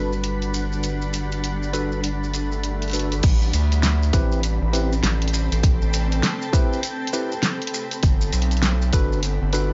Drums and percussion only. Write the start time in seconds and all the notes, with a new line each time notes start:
0.13 maracas
0.24 closed hi-hat, maracas
0.42 closed hi-hat, maracas
0.54 maracas
0.72 maracas
0.83 closed hi-hat, maracas
1.02 maracas
1.13 closed hi-hat, maracas
1.32 closed hi-hat, maracas
1.44 closed hi-hat, maracas
1.63 maracas
1.73 closed hi-hat, maracas
1.92 maracas
2.04 closed hi-hat, maracas
2.23 maracas
2.34 closed hi-hat, maracas
2.52 maracas
2.63 closed hi-hat, maracas
2.82 closed hi-hat, maracas
2.88 closed hi-hat
2.90 closed hi-hat
2.91 closed hi-hat
2.93 closed hi-hat, maracas
2.96 closed hi-hat
2.99 closed hi-hat
3.12 closed hi-hat, maracas
3.23 kick, closed hi-hat, crash, maracas
3.42 maracas
3.53 closed hi-hat, maracas
3.72 closed hi-hat, maracas
3.83 snare, closed hi-hat, maracas
4.03 maracas
4.13 kick, closed hi-hat, maracas
4.32 maracas
4.43 closed hi-hat, maracas
4.73 closed hi-hat, maracas
4.93 maracas
5.03 snare, closed hi-hat, maracas
5.22 closed hi-hat
5.28 closed hi-hat
5.34 cross-stick, maracas
5.52 closed hi-hat, maracas
5.63 kick, closed hi-hat, maracas
5.82 maracas
5.93 closed hi-hat, maracas
6.12 closed hi-hat, maracas
6.23 snare, closed hi-hat, maracas
6.42 maracas
6.53 kick, closed hi-hat, maracas
6.73 maracas
6.83 closed hi-hat, maracas
7.07 closed hi-hat
7.13 cross-stick, maracas
7.32 maracas
7.43 snare, closed hi-hat, maracas
7.62 closed hi-hat
7.67 closed hi-hat
7.74 maracas
7.91 closed hi-hat, maracas
8.03 kick, closed hi-hat, maracas
8.21 maracas
8.33 closed hi-hat, maracas
8.42 closed hi-hat
8.51 closed hi-hat, maracas
8.57 closed hi-hat
8.63 snare, closed hi-hat, maracas
8.82 maracas
8.93 kick, closed hi-hat, maracas
9.12 maracas
9.23 closed hi-hat, maracas
9.53 closed hi-hat, maracas